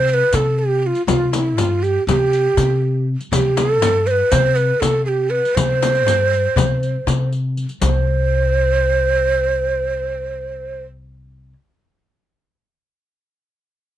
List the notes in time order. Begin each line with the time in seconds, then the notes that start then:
Already playing: C3 C5
0.07 C5, riq
0.14 B4
0.33 C3 A4, riq, frame drum
0.59 G4
0.83 F4 G4
0.95 riq
1.07 C3 F4, riq, frame drum
1.33 E4, riq, frame drum
1.57 G2 F4, riq, frame drum
1.83 G4, riq
2.07 C3 G4, riq, frame drum
2.33 riq
2.57 C3, riq, frame drum
3.21 riq
3.32 C3 G4, riq, frame drum
3.57 A4, riq, frame drum
3.82 G2, riq, frame drum
4.07 C5, riq
4.11 B4
4.32 C3 C5, riq, frame drum
4.56 B4, riq
4.80 C3 A4, riq, frame drum
5.05 G4 G#4
5.30 B4
5.45 riq
5.55 C3 C5, riq, frame drum
5.83 riq, frame drum
5.95 riq
6.06 G2, riq, frame drum
6.33 riq
6.56 C3, riq, frame drum
6.83 riq
7.07 C3, riq, frame drum
7.33 riq
7.57 riq
7.69 riq
7.81 C2 C5, riq, frame drum